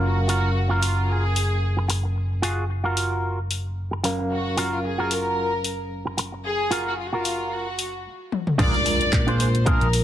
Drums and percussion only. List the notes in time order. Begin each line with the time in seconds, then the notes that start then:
0.29 open hi-hat
0.83 open hi-hat
1.36 open hi-hat
1.90 open hi-hat
2.43 open hi-hat
2.97 open hi-hat
3.51 open hi-hat
4.04 open hi-hat
4.58 open hi-hat
5.11 open hi-hat
5.64 open hi-hat
6.18 open hi-hat
6.72 open hi-hat
7.25 open hi-hat
7.79 open hi-hat
8.32 high tom
8.47 mid tom
8.59 kick, closed hi-hat, crash
8.74 closed hi-hat
8.86 open hi-hat
9.01 closed hi-hat
9.13 kick, clap, closed hi-hat
9.28 closed hi-hat
9.40 open hi-hat
9.55 closed hi-hat
9.66 kick, closed hi-hat
9.81 closed hi-hat
9.93 open hi-hat